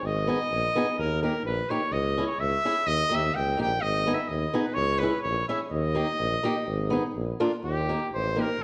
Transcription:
0.02 G#1 D#5
0.27 B3 D#4 G#4
0.51 A#1
0.75 B3 D#4 G#4
0.98 D#2 A#4
1.22 A#3 D#4 G4 A#4
1.44 A#1 B4
1.70 A#3 D#4 G4 C#5
1.92 C#2 D#5
2.18 C#4 E4 G#4
2.26 C#5
2.38 C#2 E5
2.65 C#4 E4 G#4
2.86 D#2 D#5
3.10 D#2 A#3 D#4 G4
3.14 E5
3.34 C#2 G5
3.57 A#1 A#3 D#4 G4 G5
3.81 G#1 D#5
4.06 B3 D#4 G#4
4.14 E5
4.28 D#2 D#5
4.54 B3 D#4 G#4
4.62 B4
4.74 C#2 C#5
4.99 C#4 B4
5.03 E4 G#4
5.22 A#1 C#5
5.49 C#4 E4 G#4 E5
5.70 D#2 D#5
5.95 A#3 D#4 G4
6.19 A#1
6.43 A#3 D#4 G4
6.67 G#1
6.90 B3 D#4 G#4
7.15 A#1
7.40 A#3 D4 F4
7.63 D#2 G4
7.89 A#3 D#4 G4
8.12 A1 C5
8.36 A#3 D#4 G4
8.41 A#4
8.59 G#1

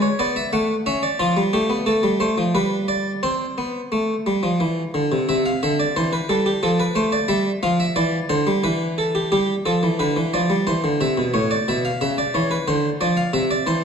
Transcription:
0.02 C#5
0.19 B3 D5
0.36 E5
0.53 A3 F#5
0.86 C#4 E5
1.03 D5
1.19 F3 F4
1.37 G3
1.53 A3 G4
1.70 B3
1.86 A3 A4
2.03 G3
2.20 A3 C5
2.38 F3
2.55 G3 B4
2.88 D5
3.23 C4 C5
3.58 B3
3.92 A3
4.26 G3
4.43 F3
4.60 E3
4.94 D3
5.12 C3
5.29 C3 E5
5.46 F5
5.63 D3 E5
5.80 D5
5.96 E3 C5
6.13 B4
6.29 G3 A4
6.46 G4
6.63 F3 A4
6.80 B4
6.95 A3 C5
7.12 D5
7.28 G3 E5
7.63 F3 F5
7.80 E5
7.96 E3 D5
8.29 D3 C5
8.47 G3
8.64 E3 B4
8.98 A4
9.15 G4
9.32 G3 G4
9.66 F3 A4
9.83 E3
9.99 D3 B4
10.16 E3
10.34 F3 D5
10.50 G3
10.67 E3 C5
10.84 D3
11.01 C3 E5
11.18 B2
11.34 A2 C#5
11.51 D5
11.68 B2 E5
11.85 F5
12.01 C#3 E5
12.18 D5
12.34 E3 C#5
12.51 B4
12.68 D3 C5
13.01 F3 D5
13.17 F5
13.33 C3 E5
13.51 D5
13.67 E3 C5

